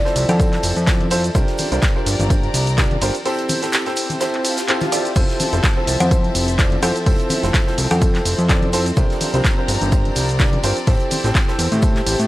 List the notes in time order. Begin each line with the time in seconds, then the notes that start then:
Already playing: F3 C4 E5 A5
0.05 C4 E4 F4 A4 C5, snare, tambourine
0.16 C2, open hi-hat, ride, tambourine, shaker
0.29 F2 A4, closed hi-hat, tambourine, high conga, shaker
0.40 C4 E4 F4 A4 C5, kick, closed hi-hat, tambourine, shaker
0.53 snare, clap, closed hi-hat, tambourine
0.63 F1, open hi-hat, ride, tambourine, shaker
0.76 F2, closed hi-hat, tambourine, shaker
0.87 C4 E4 F4 A4 D5, kick, snare, clap, closed hi-hat, tambourine, shaker
1.00 closed hi-hat, tambourine, high conga
1.10 C4 E4 F4 A4 C5, snare, open hi-hat, ride, tambourine, shaker
1.24 closed hi-hat, tambourine, shaker
1.34 C2 C4 D4 F4 G4 A#4 C5, kick, closed hi-hat, tambourine, shaker
1.46 D5, snare, closed hi-hat, tambourine
1.58 open hi-hat, ride, tambourine, high conga, shaker
1.59 shaker
1.72 C2 D4 F4 G4 A#4 C5, closed hi-hat, tambourine, shaker
1.82 kick, snare, clap, closed hi-hat, tambourine, shaker
1.96 D4 F4 G4 A#4 C5, tambourine
2.02 A#5
2.06 G1, snare, open hi-hat, ride, tambourine, shaker
2.19 G1, closed hi-hat, tambourine, high conga, shaker
2.30 D4 F4 G4 A#4 C5, kick, closed hi-hat, tambourine, shaker
2.43 closed hi-hat, tambourine
2.54 C2, open hi-hat, ride, tambourine, shaker
2.67 closed hi-hat, tambourine, shaker
2.77 D4 F4 G4 A#4 D5, kick, snare, clap, closed hi-hat, tambourine, shaker
2.91 closed hi-hat, tambourine, high conga
3.01 G1 D4 F4 G4 A#4 C5, open hi-hat, ride, tambourine, shaker
3.14 closed hi-hat, tambourine, shaker
3.25 C4 E4 G4 A4 C5, closed hi-hat, open hi-hat, tambourine, shaker
3.38 closed hi-hat, tambourine
3.49 open hi-hat, ride, tambourine, high conga, shaker
3.60 C4 E4 G4 A4 C5, snare, closed hi-hat, tambourine, shaker
3.72 snare, clap, closed hi-hat, tambourine, shaker
3.74 shaker
3.86 C4 E4 G4 A4 C5, snare, closed hi-hat, tambourine
3.92 E5 A5, tambourine, shaker
3.97 open hi-hat, ride, shaker
4.10 closed hi-hat, tambourine, high conga, shaker
4.21 C4 E4 G4 A4 C5, snare, closed hi-hat, tambourine, swell, shaker
4.34 clap, closed hi-hat, tambourine
4.44 snare, open hi-hat, ride, tambourine, shaker
4.57 snare, closed hi-hat, tambourine, shaker
4.68 C4 E4 G4 A4 C5, clap, closed hi-hat, tambourine, shaker
4.81 snare, closed hi-hat, tambourine, high conga, shaker
4.92 C4 E4 G4 A4 D5, snare, open hi-hat, ride, tambourine, shaker
5.05 closed hi-hat, tambourine, shaker
5.16 F1 C4 E4 F4 A4 C5, kick, closed hi-hat, crash, tambourine, shaker
5.29 snare, closed hi-hat, tambourine
5.36 F3, open hi-hat, ride, tambourine, shaker
5.40 high conga, shaker
5.53 F1 C4 E4 F4 A4 C5, closed hi-hat, tambourine, shaker
5.63 kick, snare, clap, closed hi-hat, tambourine, shaker
5.76 C4 E4 F4 A4 C5, tambourine
5.87 C2, snare, open hi-hat, ride, tambourine, shaker
6.00 F2 C5, closed hi-hat, tambourine, high conga, shaker
6.11 C4 E4 F4 A4 C5, kick, closed hi-hat, tambourine, shaker
6.24 closed hi-hat, tambourine
6.35 F1, open hi-hat, ride, tambourine, shaker
6.48 closed hi-hat, tambourine, shaker
6.58 C4 E4 F4 A4 D5, kick, snare, clap, closed hi-hat, tambourine, shaker
6.72 closed hi-hat, tambourine, high conga
6.82 F2 C4 E4 F4 A4 C5, open hi-hat, ride, tambourine, shaker
6.96 closed hi-hat, tambourine, shaker
7.06 F1 C4 E4 F4 A4 C5, kick, closed hi-hat, open hi-hat, tambourine, shaker
7.18 closed hi-hat, tambourine
7.29 open hi-hat, ride, tambourine, high conga, shaker
7.31 shaker
7.43 F1 C4 E4 F4 A4 C5, snare, closed hi-hat, tambourine, shaker
7.54 kick, snare, clap, closed hi-hat, tambourine, shaker
7.67 C4 E4 F4 A4 C5, snare, tambourine
7.78 C2, open hi-hat, ride, tambourine, shaker
7.91 F2 A4, closed hi-hat, tambourine, high conga, shaker
8.01 C4 E4 F4 A4 C5, kick, closed hi-hat, tambourine, shaker
8.15 snare, clap, closed hi-hat, tambourine
8.25 F1, open hi-hat, ride, tambourine, shaker
8.38 F2, closed hi-hat, tambourine, shaker
8.49 C4 E4 F4 A4 D5, kick, snare, clap, closed hi-hat, tambourine, shaker
8.62 closed hi-hat, tambourine, high conga
8.73 C4 E4 F4 A4 C5, snare, open hi-hat, ride, tambourine, shaker
8.86 closed hi-hat, tambourine, shaker
8.97 C2 D4 F4 G4 A#4 C5, kick, closed hi-hat, tambourine, shaker
9.10 snare, closed hi-hat, tambourine
9.20 A#5, open hi-hat, ride, tambourine, high conga, shaker
9.34 C2 D4 F4 G4 A#4 C5, closed hi-hat, tambourine, shaker
9.44 D5, kick, snare, clap, closed hi-hat, tambourine, shaker
9.58 D4 F4 G4 A#4 C5, tambourine
9.68 G1, snare, open hi-hat, ride, tambourine, shaker
9.81 G1, closed hi-hat, tambourine, high conga, shaker
9.92 D4 F4 G4 A#4 C5, kick, closed hi-hat, tambourine, shaker
10.05 closed hi-hat, tambourine
10.16 C2, open hi-hat, ride, tambourine, shaker
10.29 closed hi-hat, tambourine, shaker
10.39 D4 F4 G4 A#4 D5, kick, snare, clap, closed hi-hat, tambourine, shaker
10.53 closed hi-hat, tambourine, high conga
10.63 G1 D4 F4 G4 A#4 C5, open hi-hat, ride, tambourine, shaker
10.77 closed hi-hat, tambourine, shaker
10.87 A1 C4 E4 G4 A4 C5, kick, closed hi-hat, open hi-hat, tambourine, shaker
11.00 closed hi-hat, tambourine
11.09 G4, open hi-hat, ride, tambourine, high conga, shaker
11.24 A1 C4 E4 G4 A4 C5, snare, closed hi-hat, tambourine, shaker
11.35 kick, snare, clap, closed hi-hat, tambourine, shaker
11.48 C4 E4 G4 A4 C5 E5, snare, tambourine
11.59 E2, open hi-hat, ride, tambourine, shaker
11.72 A2 A5, closed hi-hat, tambourine, high conga, shaker
11.82 C4 E4 G4 A4 C5, kick, closed hi-hat, tambourine, shaker
11.96 snare, clap, closed hi-hat, tambourine
12.06 A1, open hi-hat, ride, tambourine, shaker
12.19 A2, closed hi-hat, tambourine, shaker